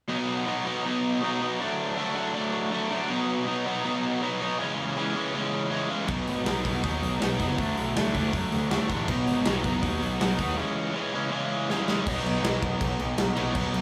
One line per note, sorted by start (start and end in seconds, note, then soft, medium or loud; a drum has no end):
0.08 0.45 B2 medium
0.08 0.47 F#3 loud
0.08 0.46 B3 loud
0.08 0.47 D#4 loud
0.46 0.65 B2 medium
0.46 0.66 F#3 medium
0.46 0.65 B3 medium
0.46 0.65 D#4 medium
0.66 0.83 B2 medium
0.66 0.85 F#3 medium
0.66 0.84 B3 medium
0.66 0.85 D#4 loud
0.85 1.20 B2 medium
0.85 1.22 F#3 medium
0.85 1.22 B3 medium
0.85 1.22 D#4 loud
1.22 1.40 B2 medium
1.22 1.42 F#3 medium
1.22 1.41 B3 medium
1.22 1.41 D#4 medium
1.41 1.58 B2 medium
1.41 1.60 F#3 medium
1.41 1.59 B3 medium
1.41 1.59 D#4 medium
1.60 1.95 D3 medium
1.60 1.97 F#3 medium
1.60 1.96 A3 loud
1.60 1.97 D4 loud
1.96 2.14 D3 medium
1.96 2.15 F#3 medium
1.96 2.15 A3 loud
1.96 2.16 D4 medium
2.15 2.33 D3 medium
2.15 2.33 F#3 medium
2.15 2.33 A3 medium
2.15 2.34 D4 loud
2.34 2.70 D3 medium
2.34 2.70 F#3 medium
2.34 2.71 A3 loud
2.34 2.71 D4 loud
2.71 2.89 D3 medium
2.71 2.90 F#3 medium
2.71 2.90 A3 medium
2.71 2.91 D4 medium
2.91 3.08 D3 medium
2.91 3.08 F#3 medium
2.91 3.08 A3 medium
2.91 3.09 D4 medium
3.09 3.45 B2 loud
3.09 3.45 F#3 medium
3.09 3.46 B3 medium
3.09 3.46 D#4 medium
3.46 3.64 B2 medium
3.46 3.64 F#3 medium
3.46 3.65 B3 loud
3.46 3.65 D#4 medium
3.65 3.82 B2 medium
3.65 3.83 F#3 medium
3.65 3.83 B3 medium
3.65 3.84 D#4 medium
3.83 4.20 B2 medium
3.83 4.21 F#3 medium
3.83 4.21 B3 loud
3.83 4.22 D#4 loud
4.21 4.39 B2 medium
4.21 4.40 F#3 medium
4.21 4.40 B3 medium
4.21 4.41 D#4 medium
4.40 4.58 B2 medium
4.40 4.58 F#3 medium
4.40 4.58 B3 medium
4.40 4.59 D#4 medium
4.58 4.95 C#3 medium
4.58 4.96 E3 loud
4.58 4.96 G#3 loud
4.58 4.97 C#4 loud
4.96 5.14 C#3 medium
4.96 5.14 E3 medium
4.96 5.14 G#3 medium
4.96 5.15 C#4 loud
5.15 5.33 C#3 medium
5.15 5.34 E3 medium
5.15 5.34 G#3 medium
5.15 5.34 C#4 medium
5.34 5.70 C#3 medium
5.34 5.70 E3 medium
5.34 5.71 G#3 loud
5.34 5.71 C#4 loud
5.71 5.88 C#3 medium
5.71 5.89 E3 medium
5.71 5.89 G#3 medium
5.71 5.90 C#4 medium
5.89 6.07 C#3 medium
5.89 6.08 E3 medium
5.89 6.08 G#3 medium
5.89 6.08 C#4 medium
6.08 6.24 B1 medium
6.08 6.44 B2 medium
6.08 6.45 F#3 loud
6.08 6.44 B3 loud
6.08 6.45 D#4 medium
6.08 kick loud
6.08 crash medium
6.27 6.43 G#1 medium
6.27 open hi-hat medium
6.45 6.61 B1 medium
6.45 6.63 B2 medium
6.45 6.65 F#3 medium
6.45 6.64 B3 medium
6.45 6.64 D#4 medium
6.45 snare loud
6.45 open hi-hat medium
6.64 6.81 B1 medium
6.64 6.82 B2 medium
6.64 6.83 F#3 medium
6.64 6.83 B3 medium
6.64 6.83 D#4 medium
6.64 kick medium
6.64 open hi-hat medium
6.83 7.00 D#2 loud
6.83 7.19 B2 medium
6.83 7.20 F#3 medium
6.83 7.20 B3 medium
6.83 7.20 D#4 loud
6.83 kick loud
6.83 open hi-hat medium
7.02 7.18 B1 medium
7.02 open hi-hat medium
7.20 7.37 B1 medium
7.20 7.38 B2 medium
7.20 7.40 F#3 medium
7.20 7.40 B3 medium
7.20 7.40 D#4 medium
7.20 snare loud
7.20 open hi-hat medium
7.40 7.56 F#1 medium
7.40 7.57 B2 medium
7.40 7.59 F#3 medium
7.40 7.58 B3 medium
7.40 7.58 D#4 medium
7.40 kick medium
7.40 open hi-hat medium
7.58 7.74 D2 loud
7.58 7.95 D3 medium
7.58 7.96 F#3 medium
7.58 7.96 A3 loud
7.58 7.96 D4 medium
7.58 kick loud
7.58 open hi-hat medium
7.77 7.93 B1 medium
7.77 open hi-hat medium
7.95 8.12 D2 medium
7.95 8.14 D3 medium
7.95 8.15 F#3 medium
7.95 8.15 A3 medium
7.95 8.15 D4 medium
7.95 snare loud
7.95 open hi-hat medium
8.15 8.31 D2 medium
8.15 8.32 D3 medium
8.15 8.32 F#3 medium
8.15 8.33 A3 medium
8.15 8.33 D4 medium
8.15 kick medium
8.15 open hi-hat medium
8.33 8.49 F#2 medium
8.33 8.70 D3 medium
8.33 8.70 F#3 medium
8.33 8.71 A3 medium
8.33 8.71 D4 loud
8.33 kick loud
8.33 open hi-hat medium
8.52 8.68 D2 medium
8.52 open hi-hat medium
8.71 8.87 D2 medium
8.71 8.88 D3 medium
8.71 8.89 F#3 medium
8.71 8.90 A3 medium
8.71 8.90 D4 medium
8.71 snare loud
8.71 open hi-hat medium
8.89 9.05 A1 medium
8.89 9.07 D3 medium
8.89 9.07 F#3 medium
8.89 9.08 A3 medium
8.89 9.08 D4 medium
8.89 kick medium
8.89 open hi-hat medium
9.08 9.24 B1 loud
9.08 9.45 B2 medium
9.08 9.46 F#3 medium
9.08 9.46 B3 loud
9.08 9.46 D#4 loud
9.08 kick loud
9.08 crash loud
9.26 9.43 G#1 medium
9.26 open hi-hat medium
9.45 9.61 B1 medium
9.45 9.63 B2 medium
9.45 9.63 F#3 medium
9.45 9.63 B3 medium
9.45 9.64 D#4 loud
9.45 snare loud
9.45 open hi-hat medium
9.64 9.80 B1 medium
9.64 9.81 B2 medium
9.64 9.81 F#3 medium
9.64 9.82 B3 loud
9.64 9.82 D#4 loud
9.64 kick medium
9.64 open hi-hat medium
9.82 9.99 D#2 loud
9.82 10.19 B2 medium
9.82 10.20 F#3 loud
9.82 10.20 B3 loud
9.82 10.21 D#4 loud
9.82 kick loud
9.82 open hi-hat medium
10.01 10.17 B1 medium
10.01 open hi-hat medium
10.20 10.36 B1 medium
10.20 10.37 B2 medium
10.20 10.38 F#3 medium
10.20 10.38 B3 medium
10.20 10.39 D#4 medium
10.20 snare loud
10.20 open hi-hat medium
10.39 10.55 D#2 medium
10.39 10.56 B2 medium
10.39 10.57 F#3 medium
10.39 10.57 B3 medium
10.39 10.57 D#4 medium
10.39 kick medium
10.39 open hi-hat medium
10.57 10.93 C#3 medium
10.57 10.94 E3 loud
10.57 10.94 G#3 loud
10.57 10.94 C#4 loud
10.94 11.12 C#3 medium
10.94 11.13 E3 medium
10.94 11.14 G#3 loud
10.94 11.14 C#4 loud
11.14 11.30 C#3 medium
11.14 11.30 E3 medium
11.14 11.31 G#3 medium
11.14 11.31 C#4 medium
11.31 11.69 C#3 medium
11.31 11.69 E3 medium
11.31 11.70 G#3 loud
11.31 11.70 C#4 medium
11.70 11.87 C#3 medium
11.70 11.87 E3 medium
11.70 11.88 G#3 medium
11.70 11.88 C#4 medium
11.70 snare medium
11.88 12.05 C#3 medium
11.88 12.06 E3 medium
11.88 12.06 G#3 medium
11.88 12.06 C#4 medium
11.88 snare medium
12.06 12.19 B1 loud
12.06 13.35 B2 medium
12.06 13.37 F#3 loud
12.06 13.36 B3 loud
12.06 13.35 D#4 loud
12.06 kick loud
12.06 crash loud
12.06 crash medium
12.24 12.37 B1 medium
12.24 crash medium
12.43 12.55 B1 medium
12.43 snare loud
12.43 crash medium
12.62 12.74 B1 medium
12.62 kick loud
12.62 crash medium
12.81 12.93 B1 loud
12.81 kick loud
12.81 crash medium
12.99 13.11 B1 medium
12.99 crash medium
13.18 13.30 B1 loud
13.18 snare loud
13.18 crash medium
13.36 13.49 B1 medium
13.36 13.53 B2 medium
13.36 13.55 F#3 medium
13.36 13.54 B3 medium
13.36 13.54 D#4 medium
13.36 crash medium
13.54 13.67 B1 loud
13.54 13.81 B2 medium
13.54 13.81 F#3 medium
13.54 13.81 B3 loud
13.54 13.81 D#4 loud
13.54 kick loud
13.54 crash loud
13.74 13.81 B1 medium
13.74 crash medium